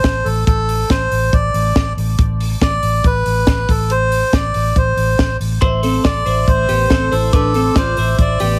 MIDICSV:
0, 0, Header, 1, 6, 480
1, 0, Start_track
1, 0, Tempo, 428878
1, 523, Time_signature, 4, 2, 24, 8
1, 9616, End_track
2, 0, Start_track
2, 0, Title_t, "Glockenspiel"
2, 0, Program_c, 0, 9
2, 6280, Note_on_c, 0, 84, 79
2, 8204, Note_on_c, 0, 86, 83
2, 8258, Note_off_c, 0, 84, 0
2, 9616, Note_off_c, 0, 86, 0
2, 9616, End_track
3, 0, Start_track
3, 0, Title_t, "Melodica"
3, 0, Program_c, 1, 22
3, 0, Note_on_c, 1, 72, 83
3, 279, Note_on_c, 1, 69, 77
3, 306, Note_off_c, 1, 72, 0
3, 499, Note_off_c, 1, 69, 0
3, 515, Note_on_c, 1, 69, 81
3, 1008, Note_on_c, 1, 72, 85
3, 1014, Note_off_c, 1, 69, 0
3, 1486, Note_on_c, 1, 74, 80
3, 1501, Note_off_c, 1, 72, 0
3, 2161, Note_off_c, 1, 74, 0
3, 2936, Note_on_c, 1, 74, 93
3, 3426, Note_off_c, 1, 74, 0
3, 3427, Note_on_c, 1, 71, 88
3, 4142, Note_on_c, 1, 69, 73
3, 4158, Note_off_c, 1, 71, 0
3, 4377, Note_on_c, 1, 72, 93
3, 4382, Note_off_c, 1, 69, 0
3, 4854, Note_on_c, 1, 74, 85
3, 4866, Note_off_c, 1, 72, 0
3, 5343, Note_on_c, 1, 72, 72
3, 5345, Note_off_c, 1, 74, 0
3, 6010, Note_off_c, 1, 72, 0
3, 6773, Note_on_c, 1, 74, 100
3, 7259, Note_on_c, 1, 72, 89
3, 7263, Note_off_c, 1, 74, 0
3, 7965, Note_on_c, 1, 69, 77
3, 7992, Note_off_c, 1, 72, 0
3, 8197, Note_off_c, 1, 69, 0
3, 8213, Note_on_c, 1, 69, 82
3, 8701, Note_off_c, 1, 69, 0
3, 8702, Note_on_c, 1, 72, 81
3, 9138, Note_off_c, 1, 72, 0
3, 9184, Note_on_c, 1, 74, 77
3, 9616, Note_off_c, 1, 74, 0
3, 9616, End_track
4, 0, Start_track
4, 0, Title_t, "Clean electric guitar"
4, 0, Program_c, 2, 27
4, 6291, Note_on_c, 2, 72, 84
4, 6300, Note_on_c, 2, 64, 67
4, 6521, Note_off_c, 2, 72, 0
4, 6526, Note_on_c, 2, 69, 69
4, 6533, Note_off_c, 2, 64, 0
4, 6536, Note_on_c, 2, 60, 60
4, 6754, Note_off_c, 2, 69, 0
4, 6761, Note_on_c, 2, 74, 68
4, 6768, Note_on_c, 2, 69, 59
4, 6771, Note_off_c, 2, 60, 0
4, 7000, Note_off_c, 2, 69, 0
4, 7003, Note_off_c, 2, 74, 0
4, 7004, Note_on_c, 2, 72, 72
4, 7016, Note_on_c, 2, 64, 57
4, 7455, Note_off_c, 2, 72, 0
4, 7462, Note_off_c, 2, 64, 0
4, 7484, Note_on_c, 2, 67, 72
4, 7491, Note_on_c, 2, 59, 57
4, 7718, Note_off_c, 2, 59, 0
4, 7723, Note_on_c, 2, 69, 74
4, 7724, Note_off_c, 2, 67, 0
4, 7730, Note_on_c, 2, 60, 57
4, 7961, Note_off_c, 2, 69, 0
4, 7966, Note_on_c, 2, 72, 78
4, 7967, Note_off_c, 2, 60, 0
4, 7974, Note_on_c, 2, 64, 57
4, 8202, Note_off_c, 2, 72, 0
4, 8206, Note_on_c, 2, 71, 88
4, 8208, Note_off_c, 2, 64, 0
4, 8217, Note_on_c, 2, 62, 69
4, 8444, Note_off_c, 2, 71, 0
4, 8450, Note_off_c, 2, 62, 0
4, 8452, Note_on_c, 2, 69, 73
4, 8457, Note_on_c, 2, 60, 59
4, 8682, Note_on_c, 2, 74, 75
4, 8687, Note_off_c, 2, 69, 0
4, 8689, Note_off_c, 2, 60, 0
4, 8694, Note_on_c, 2, 65, 56
4, 8922, Note_off_c, 2, 74, 0
4, 8927, Note_off_c, 2, 65, 0
4, 8927, Note_on_c, 2, 72, 72
4, 8938, Note_on_c, 2, 64, 56
4, 9374, Note_off_c, 2, 72, 0
4, 9380, Note_off_c, 2, 64, 0
4, 9404, Note_on_c, 2, 67, 77
4, 9415, Note_on_c, 2, 59, 57
4, 9616, Note_off_c, 2, 59, 0
4, 9616, Note_off_c, 2, 67, 0
4, 9616, End_track
5, 0, Start_track
5, 0, Title_t, "Fingered electric bass"
5, 0, Program_c, 3, 33
5, 44, Note_on_c, 3, 33, 82
5, 240, Note_off_c, 3, 33, 0
5, 284, Note_on_c, 3, 33, 92
5, 480, Note_off_c, 3, 33, 0
5, 527, Note_on_c, 3, 33, 99
5, 920, Note_off_c, 3, 33, 0
5, 1009, Note_on_c, 3, 33, 91
5, 1204, Note_off_c, 3, 33, 0
5, 1245, Note_on_c, 3, 33, 96
5, 1442, Note_off_c, 3, 33, 0
5, 1489, Note_on_c, 3, 33, 103
5, 1684, Note_off_c, 3, 33, 0
5, 1722, Note_on_c, 3, 33, 88
5, 1920, Note_off_c, 3, 33, 0
5, 1970, Note_on_c, 3, 33, 85
5, 2165, Note_off_c, 3, 33, 0
5, 2204, Note_on_c, 3, 33, 97
5, 2402, Note_off_c, 3, 33, 0
5, 2448, Note_on_c, 3, 33, 103
5, 2841, Note_off_c, 3, 33, 0
5, 2925, Note_on_c, 3, 33, 86
5, 3123, Note_off_c, 3, 33, 0
5, 3164, Note_on_c, 3, 33, 94
5, 3362, Note_off_c, 3, 33, 0
5, 3403, Note_on_c, 3, 33, 96
5, 3602, Note_off_c, 3, 33, 0
5, 3649, Note_on_c, 3, 33, 75
5, 3845, Note_off_c, 3, 33, 0
5, 3889, Note_on_c, 3, 33, 84
5, 4085, Note_off_c, 3, 33, 0
5, 4126, Note_on_c, 3, 33, 96
5, 4717, Note_off_c, 3, 33, 0
5, 4849, Note_on_c, 3, 33, 91
5, 5045, Note_off_c, 3, 33, 0
5, 5091, Note_on_c, 3, 33, 81
5, 5286, Note_off_c, 3, 33, 0
5, 5325, Note_on_c, 3, 33, 95
5, 5523, Note_off_c, 3, 33, 0
5, 5559, Note_on_c, 3, 33, 84
5, 5759, Note_off_c, 3, 33, 0
5, 5811, Note_on_c, 3, 33, 87
5, 6006, Note_off_c, 3, 33, 0
5, 6044, Note_on_c, 3, 33, 82
5, 6242, Note_off_c, 3, 33, 0
5, 6291, Note_on_c, 3, 33, 98
5, 6683, Note_off_c, 3, 33, 0
5, 6767, Note_on_c, 3, 33, 86
5, 6963, Note_off_c, 3, 33, 0
5, 7007, Note_on_c, 3, 33, 91
5, 7203, Note_off_c, 3, 33, 0
5, 7249, Note_on_c, 3, 33, 105
5, 7444, Note_off_c, 3, 33, 0
5, 7491, Note_on_c, 3, 33, 90
5, 7685, Note_off_c, 3, 33, 0
5, 7727, Note_on_c, 3, 33, 86
5, 7922, Note_off_c, 3, 33, 0
5, 7973, Note_on_c, 3, 33, 89
5, 8165, Note_off_c, 3, 33, 0
5, 8209, Note_on_c, 3, 33, 90
5, 8599, Note_off_c, 3, 33, 0
5, 8685, Note_on_c, 3, 33, 86
5, 8880, Note_off_c, 3, 33, 0
5, 8928, Note_on_c, 3, 33, 95
5, 9122, Note_off_c, 3, 33, 0
5, 9160, Note_on_c, 3, 33, 97
5, 9357, Note_off_c, 3, 33, 0
5, 9413, Note_on_c, 3, 33, 84
5, 9604, Note_off_c, 3, 33, 0
5, 9616, End_track
6, 0, Start_track
6, 0, Title_t, "Drums"
6, 43, Note_on_c, 9, 42, 55
6, 45, Note_on_c, 9, 36, 89
6, 45, Note_on_c, 9, 38, 91
6, 155, Note_off_c, 9, 42, 0
6, 157, Note_off_c, 9, 36, 0
6, 157, Note_off_c, 9, 38, 0
6, 292, Note_on_c, 9, 46, 55
6, 404, Note_off_c, 9, 46, 0
6, 528, Note_on_c, 9, 36, 113
6, 530, Note_on_c, 9, 42, 73
6, 640, Note_off_c, 9, 36, 0
6, 642, Note_off_c, 9, 42, 0
6, 771, Note_on_c, 9, 46, 65
6, 883, Note_off_c, 9, 46, 0
6, 1008, Note_on_c, 9, 36, 98
6, 1011, Note_on_c, 9, 38, 99
6, 1015, Note_on_c, 9, 42, 71
6, 1119, Note_off_c, 9, 36, 0
6, 1123, Note_off_c, 9, 38, 0
6, 1127, Note_off_c, 9, 42, 0
6, 1250, Note_on_c, 9, 46, 66
6, 1362, Note_off_c, 9, 46, 0
6, 1489, Note_on_c, 9, 36, 101
6, 1496, Note_on_c, 9, 42, 54
6, 1601, Note_off_c, 9, 36, 0
6, 1608, Note_off_c, 9, 42, 0
6, 1727, Note_on_c, 9, 46, 69
6, 1839, Note_off_c, 9, 46, 0
6, 1965, Note_on_c, 9, 42, 58
6, 1967, Note_on_c, 9, 38, 95
6, 1969, Note_on_c, 9, 36, 96
6, 2077, Note_off_c, 9, 42, 0
6, 2079, Note_off_c, 9, 38, 0
6, 2081, Note_off_c, 9, 36, 0
6, 2216, Note_on_c, 9, 46, 58
6, 2328, Note_off_c, 9, 46, 0
6, 2446, Note_on_c, 9, 42, 79
6, 2448, Note_on_c, 9, 36, 113
6, 2558, Note_off_c, 9, 42, 0
6, 2559, Note_off_c, 9, 36, 0
6, 2691, Note_on_c, 9, 46, 72
6, 2803, Note_off_c, 9, 46, 0
6, 2927, Note_on_c, 9, 36, 100
6, 2930, Note_on_c, 9, 38, 96
6, 2934, Note_on_c, 9, 42, 72
6, 3039, Note_off_c, 9, 36, 0
6, 3042, Note_off_c, 9, 38, 0
6, 3046, Note_off_c, 9, 42, 0
6, 3163, Note_on_c, 9, 46, 69
6, 3275, Note_off_c, 9, 46, 0
6, 3406, Note_on_c, 9, 36, 101
6, 3411, Note_on_c, 9, 42, 54
6, 3518, Note_off_c, 9, 36, 0
6, 3523, Note_off_c, 9, 42, 0
6, 3645, Note_on_c, 9, 46, 63
6, 3757, Note_off_c, 9, 46, 0
6, 3880, Note_on_c, 9, 42, 54
6, 3883, Note_on_c, 9, 38, 91
6, 3887, Note_on_c, 9, 36, 97
6, 3992, Note_off_c, 9, 42, 0
6, 3995, Note_off_c, 9, 38, 0
6, 3999, Note_off_c, 9, 36, 0
6, 4127, Note_on_c, 9, 36, 96
6, 4133, Note_on_c, 9, 46, 59
6, 4239, Note_off_c, 9, 36, 0
6, 4245, Note_off_c, 9, 46, 0
6, 4363, Note_on_c, 9, 42, 76
6, 4475, Note_off_c, 9, 42, 0
6, 4609, Note_on_c, 9, 46, 69
6, 4721, Note_off_c, 9, 46, 0
6, 4847, Note_on_c, 9, 36, 99
6, 4850, Note_on_c, 9, 38, 100
6, 4854, Note_on_c, 9, 42, 66
6, 4959, Note_off_c, 9, 36, 0
6, 4962, Note_off_c, 9, 38, 0
6, 4965, Note_off_c, 9, 42, 0
6, 5083, Note_on_c, 9, 46, 72
6, 5194, Note_off_c, 9, 46, 0
6, 5327, Note_on_c, 9, 36, 97
6, 5330, Note_on_c, 9, 42, 54
6, 5439, Note_off_c, 9, 36, 0
6, 5442, Note_off_c, 9, 42, 0
6, 5567, Note_on_c, 9, 46, 61
6, 5679, Note_off_c, 9, 46, 0
6, 5806, Note_on_c, 9, 42, 51
6, 5808, Note_on_c, 9, 38, 92
6, 5811, Note_on_c, 9, 36, 87
6, 5918, Note_off_c, 9, 42, 0
6, 5920, Note_off_c, 9, 38, 0
6, 5922, Note_off_c, 9, 36, 0
6, 6052, Note_on_c, 9, 46, 61
6, 6164, Note_off_c, 9, 46, 0
6, 6285, Note_on_c, 9, 42, 72
6, 6288, Note_on_c, 9, 36, 108
6, 6397, Note_off_c, 9, 42, 0
6, 6400, Note_off_c, 9, 36, 0
6, 6525, Note_on_c, 9, 46, 66
6, 6637, Note_off_c, 9, 46, 0
6, 6767, Note_on_c, 9, 38, 100
6, 6768, Note_on_c, 9, 36, 95
6, 6770, Note_on_c, 9, 42, 69
6, 6879, Note_off_c, 9, 38, 0
6, 6880, Note_off_c, 9, 36, 0
6, 6882, Note_off_c, 9, 42, 0
6, 7008, Note_on_c, 9, 46, 69
6, 7120, Note_off_c, 9, 46, 0
6, 7248, Note_on_c, 9, 36, 101
6, 7254, Note_on_c, 9, 42, 51
6, 7360, Note_off_c, 9, 36, 0
6, 7366, Note_off_c, 9, 42, 0
6, 7485, Note_on_c, 9, 46, 70
6, 7597, Note_off_c, 9, 46, 0
6, 7724, Note_on_c, 9, 42, 52
6, 7726, Note_on_c, 9, 38, 89
6, 7729, Note_on_c, 9, 36, 88
6, 7836, Note_off_c, 9, 42, 0
6, 7838, Note_off_c, 9, 38, 0
6, 7841, Note_off_c, 9, 36, 0
6, 7972, Note_on_c, 9, 46, 61
6, 8084, Note_off_c, 9, 46, 0
6, 8204, Note_on_c, 9, 42, 78
6, 8206, Note_on_c, 9, 36, 107
6, 8316, Note_off_c, 9, 42, 0
6, 8318, Note_off_c, 9, 36, 0
6, 8441, Note_on_c, 9, 46, 69
6, 8553, Note_off_c, 9, 46, 0
6, 8682, Note_on_c, 9, 36, 104
6, 8682, Note_on_c, 9, 38, 102
6, 8685, Note_on_c, 9, 42, 69
6, 8793, Note_off_c, 9, 38, 0
6, 8794, Note_off_c, 9, 36, 0
6, 8797, Note_off_c, 9, 42, 0
6, 8918, Note_on_c, 9, 46, 68
6, 9029, Note_off_c, 9, 46, 0
6, 9161, Note_on_c, 9, 36, 99
6, 9165, Note_on_c, 9, 42, 53
6, 9273, Note_off_c, 9, 36, 0
6, 9277, Note_off_c, 9, 42, 0
6, 9397, Note_on_c, 9, 46, 68
6, 9509, Note_off_c, 9, 46, 0
6, 9616, End_track
0, 0, End_of_file